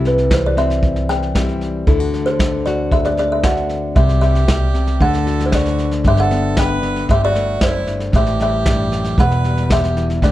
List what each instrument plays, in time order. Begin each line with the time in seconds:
Already playing: upright bass C2, nylon-string guitar C3 E4
0.05 kalimba B4, snare
0.18 snare
0.31 nylon-string guitar E3, kalimba C5, kick, snare
0.46 kalimba D5
0.57 nylon-string guitar C4, kalimba E5, snare
0.70 snare
0.83 kick, snare
0.96 snare
1.09 kalimba G5, snare
1.23 snare
1.35 nylon-string guitar G3 C4 E4, kick, snare
1.48 snare
1.61 snare
1.87 upright bass D2, nylon-string guitar D3 E4, kalimba A4, kick, snare
2.00 nylon-string guitar F#4
2.14 snare
2.26 kalimba C5, snare
2.39 nylon-string guitar A3, kick, snare
2.66 nylon-string guitar F#4, kalimba D5, snare
2.92 kalimba E5, kick, snare
3.05 kalimba D5, snare
3.17 kalimba D5, snare
3.32 kalimba E5
3.43 nylon-string guitar D4 F#4, kalimba F#5, kick, snare
3.57 snare
3.69 snare
3.95 upright bass C2, nylon-string guitar C3, harmonica G4, kalimba E5, kick, snare
4.09 snare
4.21 nylon-string guitar G3, harmonica G4, kalimba E5, snare
4.35 snare
4.48 nylon-string guitar B2, kick, snare
4.74 nylon-string guitar C3, snare
4.87 snare
5.00 upright bass D2, nylon-string guitar D3, harmonica A4, kalimba F#5, kick, snare
5.14 snare
5.26 nylon-string guitar F#4, snare
5.40 snare
5.46 harmonica E4, kalimba C5
5.52 harmonica F#4, kalimba D5, kick, snare
5.66 snare
5.78 nylon-string guitar D4, snare
5.91 snare
6.04 upright bass G1, nylon-string guitar G2, harmonica G4, kalimba E5, kick, snare
6.17 harmonica A4, kalimba F#5, snare
6.31 nylon-string guitar B3, snare
6.57 harmonica B4, kalimba G5, kick, snare
6.82 nylon-string guitar D3, snare
6.96 snare
7.08 upright bass G1, nylon-string guitar G2, harmonica G4, kalimba E5, kick, snare
7.23 harmonica F#4, kalimba D5
7.35 nylon-string guitar A3, snare
7.61 nylon-string guitar F#2, harmonica E4, kalimba C5, kick, snare
7.87 nylon-string guitar G2, snare
8.00 snare
8.12 upright bass A1, nylon-string guitar A2, harmonica G4, kalimba E5, kick, snare
8.26 snare
8.40 nylon-string guitar G3, harmonica G4, kalimba E5, snare
8.66 nylon-string guitar G2, kick, snare
8.92 nylon-string guitar F#2, snare
9.04 snare
9.18 upright bass E1, nylon-string guitar E2, harmonica B4, kalimba F#5, kick, snare
9.31 snare
9.44 nylon-string guitar G3, snare
9.57 snare
9.70 harmonica G4, kalimba E5, kick, snare
9.84 snare
9.96 nylon-string guitar E3, snare
10.10 snare
10.22 upright bass D2, nylon-string guitar D3, harmonica G4, kalimba D5, kick, snare